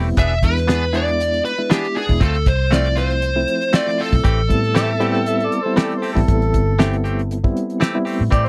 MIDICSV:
0, 0, Header, 1, 7, 480
1, 0, Start_track
1, 0, Key_signature, 0, "minor"
1, 0, Tempo, 509338
1, 162, Time_signature, 4, 2, 24, 8
1, 8000, End_track
2, 0, Start_track
2, 0, Title_t, "Harmonica"
2, 0, Program_c, 0, 22
2, 4499, Note_on_c, 0, 76, 91
2, 4800, Note_off_c, 0, 76, 0
2, 4819, Note_on_c, 0, 79, 79
2, 4971, Note_on_c, 0, 76, 80
2, 4985, Note_off_c, 0, 79, 0
2, 5140, Note_on_c, 0, 74, 73
2, 5154, Note_off_c, 0, 76, 0
2, 5301, Note_on_c, 0, 72, 67
2, 5315, Note_off_c, 0, 74, 0
2, 5458, Note_on_c, 0, 74, 72
2, 5472, Note_off_c, 0, 72, 0
2, 5625, Note_on_c, 0, 72, 78
2, 5639, Note_off_c, 0, 74, 0
2, 5766, Note_off_c, 0, 72, 0
2, 5772, Note_on_c, 0, 69, 98
2, 6697, Note_off_c, 0, 69, 0
2, 7846, Note_on_c, 0, 74, 71
2, 7967, Note_on_c, 0, 72, 74
2, 7981, Note_off_c, 0, 74, 0
2, 8000, Note_off_c, 0, 72, 0
2, 8000, End_track
3, 0, Start_track
3, 0, Title_t, "Lead electric guitar"
3, 0, Program_c, 1, 29
3, 176, Note_on_c, 1, 76, 101
3, 414, Note_on_c, 1, 71, 85
3, 416, Note_off_c, 1, 76, 0
3, 898, Note_on_c, 1, 74, 85
3, 902, Note_off_c, 1, 71, 0
3, 1337, Note_off_c, 1, 74, 0
3, 1365, Note_on_c, 1, 71, 80
3, 1610, Note_off_c, 1, 71, 0
3, 1617, Note_on_c, 1, 67, 85
3, 1856, Note_off_c, 1, 67, 0
3, 1861, Note_on_c, 1, 68, 74
3, 2095, Note_off_c, 1, 68, 0
3, 2099, Note_on_c, 1, 69, 82
3, 2330, Note_on_c, 1, 72, 85
3, 2337, Note_off_c, 1, 69, 0
3, 2569, Note_off_c, 1, 72, 0
3, 2572, Note_on_c, 1, 74, 89
3, 2805, Note_off_c, 1, 74, 0
3, 2808, Note_on_c, 1, 72, 89
3, 3532, Note_off_c, 1, 72, 0
3, 3536, Note_on_c, 1, 74, 86
3, 3775, Note_off_c, 1, 74, 0
3, 3777, Note_on_c, 1, 69, 72
3, 7330, Note_off_c, 1, 69, 0
3, 8000, End_track
4, 0, Start_track
4, 0, Title_t, "Clean electric guitar"
4, 0, Program_c, 2, 27
4, 163, Note_on_c, 2, 52, 72
4, 169, Note_on_c, 2, 59, 71
4, 170, Note_on_c, 2, 62, 77
4, 173, Note_on_c, 2, 68, 69
4, 313, Note_off_c, 2, 52, 0
4, 316, Note_off_c, 2, 59, 0
4, 317, Note_off_c, 2, 62, 0
4, 319, Note_off_c, 2, 68, 0
4, 636, Note_on_c, 2, 52, 67
4, 640, Note_on_c, 2, 59, 77
4, 646, Note_on_c, 2, 62, 67
4, 650, Note_on_c, 2, 68, 77
4, 790, Note_off_c, 2, 52, 0
4, 792, Note_off_c, 2, 59, 0
4, 795, Note_off_c, 2, 62, 0
4, 797, Note_off_c, 2, 68, 0
4, 874, Note_on_c, 2, 68, 49
4, 882, Note_on_c, 2, 62, 50
4, 894, Note_on_c, 2, 59, 39
4, 1029, Note_off_c, 2, 68, 0
4, 1033, Note_off_c, 2, 62, 0
4, 1039, Note_off_c, 2, 59, 0
4, 1600, Note_on_c, 2, 52, 78
4, 1603, Note_on_c, 2, 59, 77
4, 1608, Note_on_c, 2, 62, 85
4, 1613, Note_on_c, 2, 68, 88
4, 1752, Note_off_c, 2, 52, 0
4, 1753, Note_off_c, 2, 59, 0
4, 1756, Note_off_c, 2, 62, 0
4, 1758, Note_off_c, 2, 68, 0
4, 1838, Note_on_c, 2, 68, 53
4, 1849, Note_on_c, 2, 62, 44
4, 1858, Note_on_c, 2, 59, 39
4, 1991, Note_off_c, 2, 68, 0
4, 1996, Note_off_c, 2, 62, 0
4, 2001, Note_off_c, 2, 59, 0
4, 2076, Note_on_c, 2, 57, 65
4, 2080, Note_on_c, 2, 60, 74
4, 2087, Note_on_c, 2, 65, 71
4, 2229, Note_off_c, 2, 57, 0
4, 2231, Note_off_c, 2, 60, 0
4, 2235, Note_off_c, 2, 65, 0
4, 2551, Note_on_c, 2, 57, 72
4, 2556, Note_on_c, 2, 60, 78
4, 2563, Note_on_c, 2, 65, 70
4, 2707, Note_off_c, 2, 57, 0
4, 2710, Note_off_c, 2, 60, 0
4, 2713, Note_off_c, 2, 65, 0
4, 2786, Note_on_c, 2, 65, 56
4, 2805, Note_on_c, 2, 60, 41
4, 2945, Note_off_c, 2, 65, 0
4, 2954, Note_off_c, 2, 60, 0
4, 3514, Note_on_c, 2, 57, 79
4, 3518, Note_on_c, 2, 60, 83
4, 3523, Note_on_c, 2, 65, 81
4, 3668, Note_off_c, 2, 57, 0
4, 3670, Note_off_c, 2, 60, 0
4, 3673, Note_off_c, 2, 65, 0
4, 3751, Note_on_c, 2, 65, 43
4, 3769, Note_on_c, 2, 60, 40
4, 3907, Note_off_c, 2, 65, 0
4, 3916, Note_off_c, 2, 60, 0
4, 3993, Note_on_c, 2, 52, 70
4, 3999, Note_on_c, 2, 57, 67
4, 4003, Note_on_c, 2, 60, 74
4, 4004, Note_on_c, 2, 67, 73
4, 4148, Note_off_c, 2, 52, 0
4, 4151, Note_off_c, 2, 57, 0
4, 4153, Note_off_c, 2, 60, 0
4, 4153, Note_off_c, 2, 67, 0
4, 4472, Note_on_c, 2, 52, 80
4, 4476, Note_on_c, 2, 57, 80
4, 4482, Note_on_c, 2, 60, 85
4, 4487, Note_on_c, 2, 67, 85
4, 4627, Note_off_c, 2, 52, 0
4, 4630, Note_off_c, 2, 57, 0
4, 4632, Note_off_c, 2, 60, 0
4, 4635, Note_off_c, 2, 67, 0
4, 4716, Note_on_c, 2, 67, 58
4, 4723, Note_on_c, 2, 60, 54
4, 4732, Note_on_c, 2, 57, 45
4, 4869, Note_off_c, 2, 67, 0
4, 4873, Note_off_c, 2, 60, 0
4, 4877, Note_off_c, 2, 57, 0
4, 5432, Note_on_c, 2, 52, 88
4, 5440, Note_on_c, 2, 57, 89
4, 5444, Note_on_c, 2, 60, 89
4, 5446, Note_on_c, 2, 67, 93
4, 5587, Note_off_c, 2, 52, 0
4, 5591, Note_off_c, 2, 57, 0
4, 5593, Note_off_c, 2, 60, 0
4, 5594, Note_off_c, 2, 67, 0
4, 5675, Note_on_c, 2, 67, 54
4, 5688, Note_on_c, 2, 60, 56
4, 5694, Note_on_c, 2, 57, 43
4, 5829, Note_off_c, 2, 67, 0
4, 5835, Note_off_c, 2, 60, 0
4, 5838, Note_off_c, 2, 57, 0
4, 6396, Note_on_c, 2, 52, 80
4, 6401, Note_on_c, 2, 57, 90
4, 6405, Note_on_c, 2, 60, 92
4, 6407, Note_on_c, 2, 67, 100
4, 6549, Note_off_c, 2, 52, 0
4, 6551, Note_off_c, 2, 57, 0
4, 6554, Note_off_c, 2, 60, 0
4, 6554, Note_off_c, 2, 67, 0
4, 6635, Note_on_c, 2, 67, 53
4, 6641, Note_on_c, 2, 60, 50
4, 6649, Note_on_c, 2, 57, 46
4, 6789, Note_off_c, 2, 67, 0
4, 6791, Note_off_c, 2, 60, 0
4, 6796, Note_off_c, 2, 57, 0
4, 7352, Note_on_c, 2, 52, 74
4, 7358, Note_on_c, 2, 57, 89
4, 7361, Note_on_c, 2, 60, 99
4, 7366, Note_on_c, 2, 67, 104
4, 7507, Note_off_c, 2, 52, 0
4, 7510, Note_off_c, 2, 57, 0
4, 7511, Note_off_c, 2, 60, 0
4, 7514, Note_off_c, 2, 67, 0
4, 7587, Note_on_c, 2, 67, 52
4, 7598, Note_on_c, 2, 60, 53
4, 7606, Note_on_c, 2, 57, 43
4, 7744, Note_off_c, 2, 67, 0
4, 7750, Note_off_c, 2, 60, 0
4, 7753, Note_off_c, 2, 57, 0
4, 7828, Note_on_c, 2, 52, 63
4, 7833, Note_on_c, 2, 57, 65
4, 7835, Note_on_c, 2, 60, 72
4, 7840, Note_on_c, 2, 67, 68
4, 7985, Note_off_c, 2, 52, 0
4, 7987, Note_off_c, 2, 57, 0
4, 7988, Note_off_c, 2, 60, 0
4, 7991, Note_off_c, 2, 67, 0
4, 8000, End_track
5, 0, Start_track
5, 0, Title_t, "Reed electric piano"
5, 0, Program_c, 3, 4
5, 0, Note_on_c, 3, 55, 82
5, 0, Note_on_c, 3, 59, 75
5, 0, Note_on_c, 3, 60, 69
5, 0, Note_on_c, 3, 64, 90
5, 158, Note_off_c, 3, 55, 0
5, 159, Note_off_c, 3, 60, 0
5, 160, Note_off_c, 3, 59, 0
5, 160, Note_off_c, 3, 64, 0
5, 400, Note_on_c, 3, 56, 64
5, 402, Note_on_c, 3, 59, 58
5, 404, Note_on_c, 3, 62, 55
5, 405, Note_on_c, 3, 64, 65
5, 835, Note_off_c, 3, 56, 0
5, 836, Note_off_c, 3, 59, 0
5, 837, Note_off_c, 3, 62, 0
5, 838, Note_off_c, 3, 64, 0
5, 877, Note_on_c, 3, 64, 82
5, 879, Note_on_c, 3, 59, 66
5, 880, Note_on_c, 3, 56, 67
5, 883, Note_on_c, 3, 62, 62
5, 1421, Note_off_c, 3, 64, 0
5, 1422, Note_off_c, 3, 59, 0
5, 1423, Note_off_c, 3, 56, 0
5, 1425, Note_off_c, 3, 62, 0
5, 1494, Note_on_c, 3, 59, 56
5, 1495, Note_on_c, 3, 56, 61
5, 1495, Note_on_c, 3, 64, 72
5, 1496, Note_on_c, 3, 62, 55
5, 1919, Note_off_c, 3, 56, 0
5, 1919, Note_off_c, 3, 59, 0
5, 1919, Note_off_c, 3, 64, 0
5, 1920, Note_off_c, 3, 62, 0
5, 1969, Note_on_c, 3, 56, 66
5, 1969, Note_on_c, 3, 59, 60
5, 1971, Note_on_c, 3, 64, 69
5, 1974, Note_on_c, 3, 62, 61
5, 2081, Note_off_c, 3, 56, 0
5, 2081, Note_off_c, 3, 59, 0
5, 2082, Note_off_c, 3, 64, 0
5, 2083, Note_off_c, 3, 62, 0
5, 2558, Note_on_c, 3, 60, 63
5, 2560, Note_on_c, 3, 53, 62
5, 2561, Note_on_c, 3, 57, 54
5, 2563, Note_on_c, 3, 64, 74
5, 3102, Note_off_c, 3, 53, 0
5, 3102, Note_off_c, 3, 60, 0
5, 3103, Note_off_c, 3, 57, 0
5, 3104, Note_off_c, 3, 64, 0
5, 3162, Note_on_c, 3, 53, 68
5, 3162, Note_on_c, 3, 57, 64
5, 3165, Note_on_c, 3, 60, 65
5, 3166, Note_on_c, 3, 64, 70
5, 3592, Note_off_c, 3, 57, 0
5, 3593, Note_off_c, 3, 53, 0
5, 3594, Note_off_c, 3, 60, 0
5, 3595, Note_off_c, 3, 64, 0
5, 3643, Note_on_c, 3, 53, 66
5, 3645, Note_on_c, 3, 57, 66
5, 3645, Note_on_c, 3, 64, 69
5, 3646, Note_on_c, 3, 60, 59
5, 3997, Note_off_c, 3, 53, 0
5, 3998, Note_off_c, 3, 57, 0
5, 3998, Note_off_c, 3, 64, 0
5, 3999, Note_off_c, 3, 60, 0
5, 4230, Note_on_c, 3, 59, 64
5, 4231, Note_on_c, 3, 60, 57
5, 4231, Note_on_c, 3, 64, 67
5, 4232, Note_on_c, 3, 55, 68
5, 4669, Note_off_c, 3, 59, 0
5, 4670, Note_off_c, 3, 55, 0
5, 4670, Note_off_c, 3, 60, 0
5, 4670, Note_off_c, 3, 64, 0
5, 4712, Note_on_c, 3, 59, 83
5, 4713, Note_on_c, 3, 60, 85
5, 4715, Note_on_c, 3, 64, 102
5, 4717, Note_on_c, 3, 55, 85
5, 5258, Note_off_c, 3, 59, 0
5, 5259, Note_off_c, 3, 60, 0
5, 5260, Note_off_c, 3, 64, 0
5, 5261, Note_off_c, 3, 55, 0
5, 5332, Note_on_c, 3, 55, 78
5, 5335, Note_on_c, 3, 59, 71
5, 5335, Note_on_c, 3, 64, 80
5, 5337, Note_on_c, 3, 60, 67
5, 5757, Note_off_c, 3, 55, 0
5, 5759, Note_off_c, 3, 59, 0
5, 5759, Note_off_c, 3, 64, 0
5, 5760, Note_off_c, 3, 60, 0
5, 5798, Note_on_c, 3, 64, 86
5, 5800, Note_on_c, 3, 55, 79
5, 5801, Note_on_c, 3, 60, 70
5, 5802, Note_on_c, 3, 59, 72
5, 6337, Note_off_c, 3, 64, 0
5, 6338, Note_off_c, 3, 55, 0
5, 6338, Note_off_c, 3, 60, 0
5, 6339, Note_off_c, 3, 59, 0
5, 6399, Note_on_c, 3, 59, 79
5, 6402, Note_on_c, 3, 60, 75
5, 6403, Note_on_c, 3, 55, 72
5, 6404, Note_on_c, 3, 64, 84
5, 6942, Note_off_c, 3, 59, 0
5, 6943, Note_off_c, 3, 55, 0
5, 6943, Note_off_c, 3, 60, 0
5, 6944, Note_off_c, 3, 64, 0
5, 7009, Note_on_c, 3, 59, 75
5, 7011, Note_on_c, 3, 60, 72
5, 7012, Note_on_c, 3, 55, 80
5, 7013, Note_on_c, 3, 64, 86
5, 7435, Note_off_c, 3, 59, 0
5, 7436, Note_off_c, 3, 60, 0
5, 7437, Note_off_c, 3, 55, 0
5, 7438, Note_off_c, 3, 64, 0
5, 7490, Note_on_c, 3, 60, 69
5, 7491, Note_on_c, 3, 55, 73
5, 7493, Note_on_c, 3, 59, 74
5, 7493, Note_on_c, 3, 64, 91
5, 7840, Note_off_c, 3, 60, 0
5, 7841, Note_off_c, 3, 55, 0
5, 7842, Note_off_c, 3, 59, 0
5, 7842, Note_off_c, 3, 64, 0
5, 8000, End_track
6, 0, Start_track
6, 0, Title_t, "Fingered electric bass"
6, 0, Program_c, 4, 33
6, 0, Note_on_c, 4, 28, 73
6, 131, Note_off_c, 4, 28, 0
6, 161, Note_on_c, 4, 28, 87
6, 387, Note_off_c, 4, 28, 0
6, 398, Note_on_c, 4, 40, 83
6, 1322, Note_off_c, 4, 40, 0
6, 1968, Note_on_c, 4, 28, 79
6, 2073, Note_off_c, 4, 28, 0
6, 2078, Note_on_c, 4, 38, 99
6, 2305, Note_off_c, 4, 38, 0
6, 2323, Note_on_c, 4, 36, 91
6, 3244, Note_off_c, 4, 36, 0
6, 3890, Note_on_c, 4, 35, 92
6, 3994, Note_off_c, 4, 35, 0
6, 3998, Note_on_c, 4, 33, 97
6, 4225, Note_off_c, 4, 33, 0
6, 4240, Note_on_c, 4, 45, 87
6, 5162, Note_off_c, 4, 45, 0
6, 5807, Note_on_c, 4, 33, 83
6, 5912, Note_off_c, 4, 33, 0
6, 5918, Note_on_c, 4, 33, 98
6, 6144, Note_off_c, 4, 33, 0
6, 6159, Note_on_c, 4, 31, 93
6, 7082, Note_off_c, 4, 31, 0
6, 7734, Note_on_c, 4, 45, 87
6, 7836, Note_off_c, 4, 45, 0
6, 7841, Note_on_c, 4, 45, 87
6, 8000, Note_off_c, 4, 45, 0
6, 8000, End_track
7, 0, Start_track
7, 0, Title_t, "Drums"
7, 160, Note_on_c, 9, 42, 76
7, 163, Note_on_c, 9, 36, 99
7, 254, Note_off_c, 9, 42, 0
7, 258, Note_off_c, 9, 36, 0
7, 402, Note_on_c, 9, 42, 55
7, 403, Note_on_c, 9, 36, 83
7, 496, Note_off_c, 9, 42, 0
7, 497, Note_off_c, 9, 36, 0
7, 535, Note_on_c, 9, 42, 37
7, 542, Note_on_c, 9, 38, 32
7, 629, Note_off_c, 9, 42, 0
7, 636, Note_off_c, 9, 38, 0
7, 646, Note_on_c, 9, 42, 76
7, 654, Note_on_c, 9, 38, 91
7, 740, Note_off_c, 9, 42, 0
7, 748, Note_off_c, 9, 38, 0
7, 887, Note_on_c, 9, 42, 53
7, 982, Note_off_c, 9, 42, 0
7, 1020, Note_on_c, 9, 42, 35
7, 1114, Note_off_c, 9, 42, 0
7, 1133, Note_on_c, 9, 42, 77
7, 1227, Note_off_c, 9, 42, 0
7, 1258, Note_on_c, 9, 42, 35
7, 1352, Note_off_c, 9, 42, 0
7, 1369, Note_on_c, 9, 42, 51
7, 1463, Note_off_c, 9, 42, 0
7, 1608, Note_on_c, 9, 42, 73
7, 1616, Note_on_c, 9, 38, 102
7, 1702, Note_off_c, 9, 42, 0
7, 1710, Note_off_c, 9, 38, 0
7, 1738, Note_on_c, 9, 42, 34
7, 1832, Note_off_c, 9, 42, 0
7, 1849, Note_on_c, 9, 46, 71
7, 1943, Note_off_c, 9, 46, 0
7, 1972, Note_on_c, 9, 36, 76
7, 2066, Note_off_c, 9, 36, 0
7, 2080, Note_on_c, 9, 42, 72
7, 2082, Note_on_c, 9, 36, 91
7, 2174, Note_off_c, 9, 42, 0
7, 2176, Note_off_c, 9, 36, 0
7, 2212, Note_on_c, 9, 42, 37
7, 2306, Note_off_c, 9, 42, 0
7, 2319, Note_on_c, 9, 42, 57
7, 2321, Note_on_c, 9, 36, 79
7, 2413, Note_off_c, 9, 42, 0
7, 2415, Note_off_c, 9, 36, 0
7, 2562, Note_on_c, 9, 42, 79
7, 2569, Note_on_c, 9, 38, 96
7, 2656, Note_off_c, 9, 42, 0
7, 2663, Note_off_c, 9, 38, 0
7, 2690, Note_on_c, 9, 42, 40
7, 2785, Note_off_c, 9, 42, 0
7, 2797, Note_on_c, 9, 42, 60
7, 2804, Note_on_c, 9, 38, 28
7, 2891, Note_off_c, 9, 42, 0
7, 2899, Note_off_c, 9, 38, 0
7, 2926, Note_on_c, 9, 42, 36
7, 3020, Note_off_c, 9, 42, 0
7, 3035, Note_on_c, 9, 42, 80
7, 3130, Note_off_c, 9, 42, 0
7, 3276, Note_on_c, 9, 42, 56
7, 3370, Note_off_c, 9, 42, 0
7, 3407, Note_on_c, 9, 42, 38
7, 3501, Note_off_c, 9, 42, 0
7, 3516, Note_on_c, 9, 42, 79
7, 3523, Note_on_c, 9, 38, 97
7, 3610, Note_off_c, 9, 42, 0
7, 3617, Note_off_c, 9, 38, 0
7, 3657, Note_on_c, 9, 38, 30
7, 3751, Note_off_c, 9, 38, 0
7, 3763, Note_on_c, 9, 46, 72
7, 3857, Note_off_c, 9, 46, 0
7, 3890, Note_on_c, 9, 36, 74
7, 3985, Note_off_c, 9, 36, 0
7, 4000, Note_on_c, 9, 42, 75
7, 4002, Note_on_c, 9, 36, 94
7, 4094, Note_off_c, 9, 42, 0
7, 4096, Note_off_c, 9, 36, 0
7, 4242, Note_on_c, 9, 36, 71
7, 4243, Note_on_c, 9, 42, 57
7, 4336, Note_off_c, 9, 36, 0
7, 4337, Note_off_c, 9, 42, 0
7, 4373, Note_on_c, 9, 42, 36
7, 4467, Note_off_c, 9, 42, 0
7, 4481, Note_on_c, 9, 42, 74
7, 4489, Note_on_c, 9, 38, 102
7, 4576, Note_off_c, 9, 42, 0
7, 4583, Note_off_c, 9, 38, 0
7, 4719, Note_on_c, 9, 42, 50
7, 4813, Note_off_c, 9, 42, 0
7, 4852, Note_on_c, 9, 42, 34
7, 4946, Note_off_c, 9, 42, 0
7, 4959, Note_on_c, 9, 42, 86
7, 5054, Note_off_c, 9, 42, 0
7, 5091, Note_on_c, 9, 42, 35
7, 5185, Note_off_c, 9, 42, 0
7, 5203, Note_on_c, 9, 42, 52
7, 5298, Note_off_c, 9, 42, 0
7, 5439, Note_on_c, 9, 42, 71
7, 5446, Note_on_c, 9, 38, 106
7, 5533, Note_off_c, 9, 42, 0
7, 5541, Note_off_c, 9, 38, 0
7, 5571, Note_on_c, 9, 42, 32
7, 5665, Note_off_c, 9, 42, 0
7, 5683, Note_on_c, 9, 46, 69
7, 5777, Note_off_c, 9, 46, 0
7, 5810, Note_on_c, 9, 36, 72
7, 5904, Note_off_c, 9, 36, 0
7, 5921, Note_on_c, 9, 42, 68
7, 5922, Note_on_c, 9, 36, 91
7, 6015, Note_off_c, 9, 42, 0
7, 6016, Note_off_c, 9, 36, 0
7, 6049, Note_on_c, 9, 42, 34
7, 6143, Note_off_c, 9, 42, 0
7, 6163, Note_on_c, 9, 36, 73
7, 6163, Note_on_c, 9, 42, 61
7, 6257, Note_off_c, 9, 36, 0
7, 6257, Note_off_c, 9, 42, 0
7, 6403, Note_on_c, 9, 42, 76
7, 6411, Note_on_c, 9, 38, 108
7, 6497, Note_off_c, 9, 42, 0
7, 6505, Note_off_c, 9, 38, 0
7, 6534, Note_on_c, 9, 42, 39
7, 6628, Note_off_c, 9, 42, 0
7, 6647, Note_on_c, 9, 42, 58
7, 6741, Note_off_c, 9, 42, 0
7, 6778, Note_on_c, 9, 42, 39
7, 6872, Note_off_c, 9, 42, 0
7, 6890, Note_on_c, 9, 42, 81
7, 6984, Note_off_c, 9, 42, 0
7, 7014, Note_on_c, 9, 36, 72
7, 7108, Note_off_c, 9, 36, 0
7, 7131, Note_on_c, 9, 42, 60
7, 7225, Note_off_c, 9, 42, 0
7, 7255, Note_on_c, 9, 42, 37
7, 7349, Note_off_c, 9, 42, 0
7, 7365, Note_on_c, 9, 42, 76
7, 7372, Note_on_c, 9, 38, 98
7, 7459, Note_off_c, 9, 42, 0
7, 7467, Note_off_c, 9, 38, 0
7, 7604, Note_on_c, 9, 46, 66
7, 7698, Note_off_c, 9, 46, 0
7, 7843, Note_on_c, 9, 36, 96
7, 7844, Note_on_c, 9, 42, 75
7, 7937, Note_off_c, 9, 36, 0
7, 7938, Note_off_c, 9, 42, 0
7, 8000, End_track
0, 0, End_of_file